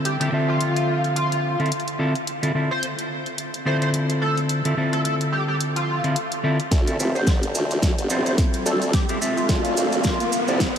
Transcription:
0.00 0.17 D3 medium
0.00 0.17 C4 medium
0.00 0.17 E4 medium
0.00 0.17 F4 medium
0.00 0.17 A4 medium
0.05 0.15 G4 medium
0.05 closed hi-hat medium
0.20 0.31 D3 medium
0.20 0.31 C4 medium
0.20 0.31 E4 medium
0.20 0.31 F4 medium
0.20 0.28 G4 medium
0.20 0.31 A4 medium
0.20 closed hi-hat soft
0.32 1.56 D3 medium
0.32 1.56 C4 medium
0.32 1.56 F4 medium
0.32 1.56 A4 medium
0.32 1.56 E5 medium
0.48 1.14 F4 medium
0.61 closed hi-hat medium
0.76 closed hi-hat soft
1.04 closed hi-hat soft
1.16 1.59 F4 medium
1.16 closed hi-hat medium
1.32 closed hi-hat soft
1.59 1.70 D3 medium
1.59 1.70 C4 medium
1.59 1.70 E4 medium
1.59 1.70 F4 medium
1.59 1.70 A4 medium
1.59 closed hi-hat soft
1.66 closed hi-hat soft
1.72 closed hi-hat medium
1.80 closed hi-hat soft
1.88 closed hi-hat soft
1.99 2.13 D3 medium
1.99 2.13 C4 medium
1.99 2.13 E4 medium
1.99 2.13 F4 medium
1.99 2.13 A4 loud
2.15 closed hi-hat soft
2.27 closed hi-hat medium
2.42 2.52 D3 medium
2.42 2.52 C4 medium
2.42 2.52 E4 medium
2.42 2.52 F4 medium
2.42 2.52 A4 medium
2.42 closed hi-hat soft
2.54 2.69 D3 medium
2.54 2.68 C4 medium
2.54 2.68 E4 medium
2.54 2.68 F4 medium
2.54 2.68 A4 medium
2.71 2.85 C5 medium
2.83 closed hi-hat medium
2.99 closed hi-hat soft
3.26 closed hi-hat soft
3.38 closed hi-hat medium
3.54 closed hi-hat soft
3.65 4.61 D3 medium
3.65 4.61 C4 medium
3.65 4.61 E4 medium
3.65 4.61 F4 medium
3.65 4.61 A4 loud
3.65 3.76 C5 medium
3.81 3.89 C5 medium
3.81 closed hi-hat soft
3.94 closed hi-hat medium
4.10 closed hi-hat soft
4.21 4.39 A4 medium
4.37 closed hi-hat soft
4.49 closed hi-hat medium
4.65 4.75 D3 medium
4.65 4.75 C4 medium
4.65 4.75 E4 medium
4.65 4.75 F4 medium
4.65 4.75 A4 medium
4.65 closed hi-hat soft
4.77 6.00 D3 medium
4.77 6.00 C4 medium
4.77 6.00 E4 medium
4.77 6.00 F4 medium
4.77 6.00 A4 medium
4.93 5.00 A4 medium
4.93 closed hi-hat soft
5.04 5.15 A4 medium
5.04 closed hi-hat medium
5.21 closed hi-hat soft
5.32 5.43 G4 medium
5.48 5.56 G4 medium
5.61 closed hi-hat medium
5.76 6.16 F4 medium
5.76 closed hi-hat soft
6.04 6.14 D3 medium
6.04 6.14 C4 medium
6.04 6.14 E4 medium
6.04 6.14 F4 medium
6.04 6.14 A4 medium
6.04 closed hi-hat soft
6.16 closed hi-hat medium
6.32 closed hi-hat soft
6.43 6.57 D3 medium
6.43 6.57 C4 medium
6.43 6.57 E4 medium
6.43 6.57 F4 medium
6.43 6.57 A4 loud
6.60 closed hi-hat soft
6.71 6.97 D2 medium
6.71 kick medium
6.71 snare soft
6.71 closed hi-hat medium
6.71 riser medium
6.71 maracas soft
6.87 6.96 C4 medium
6.87 6.96 E4 medium
6.87 6.96 F4 medium
6.87 6.96 A4 medium
6.87 closed hi-hat soft
6.87 maracas soft
6.99 7.12 F1 medium
6.99 7.13 C4 medium
6.99 7.13 E4 medium
6.99 7.13 F4 medium
6.99 7.13 A4 medium
6.99 maracas medium
7.15 7.53 G1 medium
7.15 7.29 C5 medium
7.15 maracas soft
7.27 kick medium
7.27 snare soft
7.27 closed hi-hat medium
7.27 maracas medium
7.43 closed hi-hat medium
7.43 maracas soft
7.55 7.96 D2 medium
7.55 maracas medium
7.71 closed hi-hat soft
7.71 maracas soft
7.82 kick medium
7.82 snare medium
7.82 closed hi-hat medium
7.82 maracas soft
7.98 8.36 G1 loud
7.98 closed hi-hat medium
7.98 maracas soft
8.10 9.06 C4 medium
8.10 9.06 E4 medium
8.10 9.06 F4 medium
8.10 9.06 A4 loud
8.10 8.20 C5 medium
8.10 maracas medium
8.26 8.34 C5 medium
8.26 closed hi-hat soft
8.26 maracas soft
8.38 kick medium
8.38 snare medium
8.38 closed hi-hat medium
8.38 maracas medium
8.53 closed hi-hat medium
8.53 maracas soft
8.66 8.92 D2 medium
8.66 8.83 A4 medium
8.66 maracas medium
8.82 closed hi-hat soft
8.82 maracas soft
8.93 9.04 G4 medium
8.93 kick medium
8.93 snare medium
8.93 closed hi-hat medium
8.93 maracas medium
9.09 9.20 C4 medium
9.09 9.20 E4 medium
9.09 9.20 F4 medium
9.09 9.17 G4 medium
9.09 9.20 A4 medium
9.09 closed hi-hat medium
9.09 maracas soft
9.21 10.45 C4 medium
9.21 10.45 F4 medium
9.21 10.45 A4 medium
9.21 10.45 E5 medium
9.21 maracas medium
9.37 10.02 F4 medium
9.37 maracas soft
9.49 9.75 D2 medium
9.49 kick medium
9.49 snare medium
9.49 closed hi-hat medium
9.49 maracas medium
9.65 closed hi-hat medium
9.65 maracas soft
9.77 10.18 D2 medium
9.77 maracas loud
9.92 closed hi-hat soft
9.92 maracas soft
10.04 10.48 F4 medium
10.04 kick medium
10.04 snare medium
10.04 closed hi-hat medium
10.04 maracas medium
10.20 closed hi-hat medium
10.20 maracas soft
10.32 maracas medium
10.48 10.74 C2 loud
10.48 10.59 C4 medium
10.48 10.59 E4 medium
10.48 10.59 F4 medium
10.48 10.59 A4 medium
10.48 maracas soft
10.60 kick medium
10.60 snare medium
10.60 closed hi-hat medium
10.60 maracas medium

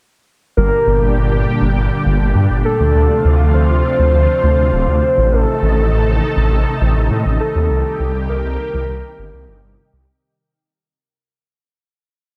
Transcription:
0.57 0.70 G1 loud
0.57 2.92 A#2 medium
0.57 2.92 D3 medium
0.57 2.92 G3 medium
0.57 5.28 D4 medium
0.57 2.92 G4 medium
0.57 1.34 A#4 loud
0.87 0.99 G1 loud
1.02 1.14 G1 medium
1.16 1.29 G1 loud
1.31 1.44 G1 medium
1.61 1.74 G1 medium
1.76 1.89 G1 loud
2.05 2.18 G1 medium
2.20 2.33 G1 medium
2.35 2.48 G2 loud
2.50 2.63 G1 medium
2.65 3.42 A4 loud
2.80 2.92 D2 medium
2.95 3.07 D2 loud
2.95 5.30 C3 medium
2.95 5.30 F3 medium
2.95 5.30 A3 medium
2.95 5.30 F4 medium
3.24 3.37 D2 loud
3.39 3.52 D2 medium
3.54 3.67 D2 loud
3.54 5.34 C5 loud
3.69 3.82 D2 medium
3.99 4.11 D2 medium
4.13 4.26 D2 loud
4.43 4.56 D2 medium
4.58 4.71 D2 medium
4.73 4.86 D1 medium
4.88 5.00 D2 medium
5.17 5.30 A1 medium
5.32 5.45 A1 loud
5.32 10.04 C3 medium
5.32 10.04 D#3 medium
5.32 7.68 A3 medium
5.32 10.04 D#4 medium
5.32 6.09 A4 loud
5.32 7.68 A4 medium
5.62 5.75 A1 loud
5.77 5.90 A1 medium
5.92 6.04 A1 loud
6.07 6.19 A1 medium
6.36 6.49 A1 medium
6.51 6.64 A1 loud
6.81 6.93 A1 loud
6.96 7.08 A1 medium
7.10 7.23 A2 loud
7.25 7.38 A1 medium
7.40 8.17 A4 loud
7.55 7.68 D#2 medium
7.70 7.83 C2 loud
7.70 10.05 G3 medium
7.70 10.05 G4 medium
8.00 8.12 C2 medium
8.14 8.27 C2 medium
8.29 8.42 C2 loud
8.29 9.96 A#4 loud
8.44 8.57 C2 medium
8.74 8.87 C2 medium
8.89 9.01 C2 loud
9.18 9.31 G1 loud
9.33 9.46 C2 medium
9.48 9.61 G1 loud
9.63 9.76 G1 medium
9.93 10.05 C2 medium

